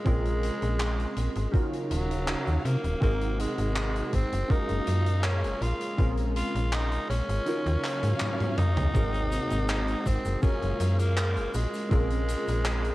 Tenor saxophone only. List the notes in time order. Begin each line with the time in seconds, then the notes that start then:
0.07 G#3
1.91 F#3
2.65 A#3
3.03 A#3
3.40 G#3
4.14 C4
4.51 D#4
5.25 C#4
5.62 F4
6.36 F4
6.73 D#4
7.09 C#4
8.58 D#4
10.07 C4
10.43 C#4
10.99 A#3
11.55 G#3
11.92 G#3